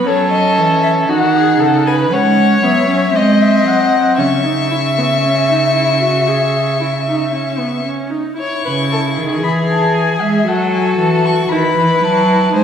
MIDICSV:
0, 0, Header, 1, 5, 480
1, 0, Start_track
1, 0, Key_signature, 4, "minor"
1, 0, Tempo, 1025641
1, 34, Time_signature, 4, 2, 24, 8
1, 1474, Tempo, 1047120
1, 4354, Tempo, 1034483
1, 5841, End_track
2, 0, Start_track
2, 0, Title_t, "Violin"
2, 0, Program_c, 0, 40
2, 29, Note_on_c, 0, 73, 83
2, 142, Note_off_c, 0, 73, 0
2, 147, Note_on_c, 0, 75, 81
2, 384, Note_off_c, 0, 75, 0
2, 387, Note_on_c, 0, 76, 78
2, 425, Note_off_c, 0, 76, 0
2, 513, Note_on_c, 0, 78, 82
2, 866, Note_off_c, 0, 78, 0
2, 874, Note_on_c, 0, 80, 77
2, 911, Note_off_c, 0, 80, 0
2, 994, Note_on_c, 0, 78, 79
2, 1230, Note_off_c, 0, 78, 0
2, 1238, Note_on_c, 0, 76, 77
2, 1478, Note_on_c, 0, 75, 81
2, 1485, Note_off_c, 0, 76, 0
2, 1594, Note_on_c, 0, 76, 72
2, 1600, Note_off_c, 0, 75, 0
2, 1712, Note_on_c, 0, 78, 79
2, 1719, Note_off_c, 0, 76, 0
2, 1950, Note_off_c, 0, 78, 0
2, 1952, Note_on_c, 0, 85, 77
2, 3619, Note_off_c, 0, 85, 0
2, 3880, Note_on_c, 0, 85, 79
2, 4339, Note_off_c, 0, 85, 0
2, 4356, Note_on_c, 0, 83, 65
2, 4393, Note_off_c, 0, 83, 0
2, 4479, Note_on_c, 0, 81, 68
2, 4593, Note_off_c, 0, 81, 0
2, 4596, Note_on_c, 0, 80, 67
2, 4716, Note_on_c, 0, 76, 62
2, 4723, Note_off_c, 0, 80, 0
2, 4839, Note_on_c, 0, 78, 69
2, 4846, Note_off_c, 0, 76, 0
2, 4952, Note_off_c, 0, 78, 0
2, 4955, Note_on_c, 0, 80, 59
2, 5075, Note_off_c, 0, 80, 0
2, 5080, Note_on_c, 0, 81, 61
2, 5200, Note_on_c, 0, 85, 67
2, 5207, Note_off_c, 0, 81, 0
2, 5316, Note_off_c, 0, 85, 0
2, 5319, Note_on_c, 0, 83, 72
2, 5562, Note_on_c, 0, 81, 74
2, 5569, Note_off_c, 0, 83, 0
2, 5797, Note_off_c, 0, 81, 0
2, 5800, Note_on_c, 0, 80, 73
2, 5841, Note_off_c, 0, 80, 0
2, 5841, End_track
3, 0, Start_track
3, 0, Title_t, "Violin"
3, 0, Program_c, 1, 40
3, 31, Note_on_c, 1, 69, 78
3, 509, Note_on_c, 1, 66, 75
3, 516, Note_off_c, 1, 69, 0
3, 630, Note_off_c, 1, 66, 0
3, 633, Note_on_c, 1, 68, 75
3, 748, Note_on_c, 1, 69, 68
3, 755, Note_off_c, 1, 68, 0
3, 876, Note_on_c, 1, 71, 74
3, 883, Note_off_c, 1, 69, 0
3, 997, Note_on_c, 1, 73, 80
3, 1004, Note_off_c, 1, 71, 0
3, 1477, Note_on_c, 1, 75, 70
3, 1484, Note_off_c, 1, 73, 0
3, 1946, Note_off_c, 1, 75, 0
3, 1949, Note_on_c, 1, 76, 70
3, 3617, Note_off_c, 1, 76, 0
3, 3879, Note_on_c, 1, 73, 69
3, 3989, Note_off_c, 1, 73, 0
3, 3997, Note_on_c, 1, 71, 60
3, 4034, Note_off_c, 1, 71, 0
3, 4120, Note_on_c, 1, 69, 60
3, 4157, Note_off_c, 1, 69, 0
3, 4237, Note_on_c, 1, 68, 69
3, 4842, Note_on_c, 1, 69, 66
3, 4849, Note_off_c, 1, 68, 0
3, 5320, Note_off_c, 1, 69, 0
3, 5325, Note_on_c, 1, 71, 74
3, 5790, Note_off_c, 1, 71, 0
3, 5806, Note_on_c, 1, 72, 70
3, 5841, Note_off_c, 1, 72, 0
3, 5841, End_track
4, 0, Start_track
4, 0, Title_t, "Viola"
4, 0, Program_c, 2, 41
4, 31, Note_on_c, 2, 61, 71
4, 508, Note_on_c, 2, 63, 73
4, 515, Note_off_c, 2, 61, 0
4, 989, Note_off_c, 2, 63, 0
4, 992, Note_on_c, 2, 61, 80
4, 1232, Note_on_c, 2, 59, 71
4, 1239, Note_off_c, 2, 61, 0
4, 1344, Note_off_c, 2, 59, 0
4, 1347, Note_on_c, 2, 61, 67
4, 1465, Note_off_c, 2, 61, 0
4, 1468, Note_on_c, 2, 60, 76
4, 1946, Note_on_c, 2, 61, 62
4, 1953, Note_off_c, 2, 60, 0
4, 2062, Note_on_c, 2, 63, 57
4, 2069, Note_off_c, 2, 61, 0
4, 2185, Note_off_c, 2, 63, 0
4, 2188, Note_on_c, 2, 64, 61
4, 2224, Note_off_c, 2, 64, 0
4, 2311, Note_on_c, 2, 59, 51
4, 2348, Note_off_c, 2, 59, 0
4, 2432, Note_on_c, 2, 61, 58
4, 2549, Note_on_c, 2, 63, 56
4, 2555, Note_off_c, 2, 61, 0
4, 2664, Note_off_c, 2, 63, 0
4, 2666, Note_on_c, 2, 64, 58
4, 2785, Note_off_c, 2, 64, 0
4, 2788, Note_on_c, 2, 66, 56
4, 2908, Note_on_c, 2, 68, 60
4, 2915, Note_off_c, 2, 66, 0
4, 3147, Note_off_c, 2, 68, 0
4, 3149, Note_on_c, 2, 64, 57
4, 3186, Note_off_c, 2, 64, 0
4, 3269, Note_on_c, 2, 63, 59
4, 3384, Note_off_c, 2, 63, 0
4, 3387, Note_on_c, 2, 61, 52
4, 3510, Note_on_c, 2, 59, 53
4, 3516, Note_off_c, 2, 61, 0
4, 3625, Note_off_c, 2, 59, 0
4, 3628, Note_on_c, 2, 61, 56
4, 3744, Note_on_c, 2, 63, 52
4, 3751, Note_off_c, 2, 61, 0
4, 3866, Note_off_c, 2, 63, 0
4, 3869, Note_on_c, 2, 64, 66
4, 4334, Note_off_c, 2, 64, 0
4, 4351, Note_on_c, 2, 68, 66
4, 4828, Note_off_c, 2, 68, 0
4, 4836, Note_on_c, 2, 66, 75
4, 5320, Note_on_c, 2, 64, 65
4, 5327, Note_off_c, 2, 66, 0
4, 5791, Note_off_c, 2, 64, 0
4, 5793, Note_on_c, 2, 63, 69
4, 5841, Note_off_c, 2, 63, 0
4, 5841, End_track
5, 0, Start_track
5, 0, Title_t, "Cello"
5, 0, Program_c, 3, 42
5, 33, Note_on_c, 3, 54, 72
5, 272, Note_on_c, 3, 52, 68
5, 279, Note_off_c, 3, 54, 0
5, 509, Note_off_c, 3, 52, 0
5, 512, Note_on_c, 3, 51, 76
5, 748, Note_off_c, 3, 51, 0
5, 750, Note_on_c, 3, 49, 71
5, 991, Note_on_c, 3, 56, 78
5, 998, Note_off_c, 3, 49, 0
5, 1227, Note_off_c, 3, 56, 0
5, 1230, Note_on_c, 3, 54, 69
5, 1468, Note_off_c, 3, 54, 0
5, 1472, Note_on_c, 3, 56, 71
5, 1706, Note_off_c, 3, 56, 0
5, 1711, Note_on_c, 3, 54, 67
5, 1950, Note_on_c, 3, 49, 64
5, 1957, Note_off_c, 3, 54, 0
5, 3636, Note_off_c, 3, 49, 0
5, 3998, Note_on_c, 3, 49, 70
5, 4236, Note_on_c, 3, 51, 80
5, 4243, Note_off_c, 3, 49, 0
5, 4353, Note_off_c, 3, 51, 0
5, 4356, Note_on_c, 3, 52, 77
5, 4712, Note_off_c, 3, 52, 0
5, 4720, Note_on_c, 3, 56, 67
5, 4837, Note_off_c, 3, 56, 0
5, 4839, Note_on_c, 3, 54, 85
5, 5075, Note_off_c, 3, 54, 0
5, 5079, Note_on_c, 3, 52, 79
5, 5314, Note_off_c, 3, 52, 0
5, 5318, Note_on_c, 3, 51, 79
5, 5436, Note_off_c, 3, 51, 0
5, 5439, Note_on_c, 3, 52, 77
5, 5556, Note_off_c, 3, 52, 0
5, 5559, Note_on_c, 3, 54, 81
5, 5793, Note_off_c, 3, 54, 0
5, 5800, Note_on_c, 3, 56, 79
5, 5841, Note_off_c, 3, 56, 0
5, 5841, End_track
0, 0, End_of_file